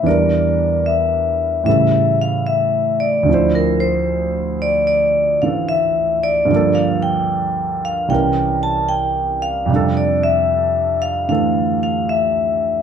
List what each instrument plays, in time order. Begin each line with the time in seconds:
0.03 grand piano E2 E3 G3 D4, vibraphone D5
0.08 grand piano A#4
0.86 vibraphone E5
1.64 grand piano A2 E3 G3, vibraphone E5
1.69 grand piano C#3 A4
2.22 vibraphone F5
2.47 vibraphone E5
3.00 vibraphone D5
3.23 grand piano D2 D3
3.29 grand piano F3 E4
3.34 grand piano C5
3.55 vibraphone A#4
3.80 vibraphone C5
4.62 vibraphone D5
4.87 vibraphone D5
5.42 grand piano D3 E3 D4 A4, vibraphone F5
5.69 vibraphone E5
6.24 vibraphone D5
6.45 grand piano G2 D3
6.51 grand piano F3 A#3
6.56 grand piano A4
6.75 vibraphone F5
7.03 vibraphone G5
7.85 vibraphone F5
8.08 grand piano C2 C3 E3 C#4, vibraphone G5
8.12 grand piano A#4
8.63 vibraphone A5
8.89 vibraphone G5
9.42 vibraphone F5
9.66 grand piano F2 C3
9.70 grand piano G3 D4
9.76 grand piano A4
9.97 vibraphone D5
10.23 vibraphone E5
11.02 vibraphone F5
11.29 grand piano D3 E3 A3 A4, vibraphone F5
11.83 vibraphone F5
12.09 vibraphone E5